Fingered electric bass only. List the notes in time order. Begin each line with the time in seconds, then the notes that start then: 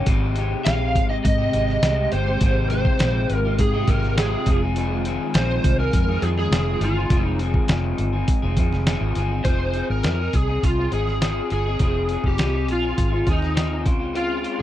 0.07 G#1
0.66 A#1
0.96 G#1
1.25 G#2
1.54 G#1
1.82 C2
2.12 G1
2.42 G#1
3.01 A#1
3.30 G#1
3.59 G#2
3.87 G#1
4.47 F1
5.35 A#1
5.65 C2
5.94 F2
6.22 F2
6.51 F1
6.81 G1
7.10 F1
7.70 F1
7.99 G1
8.43 F1
8.57 F2
8.72 F1
9.01 G#1
9.16 G1
9.45 F1
9.90 G#1
10.04 F2
10.34 C2
10.63 C2
10.92 G#1
11.52 G1
11.80 F1
12.24 F1
12.40 C2
12.69 A#1
12.98 G#1
13.27 D#2
13.86 C#2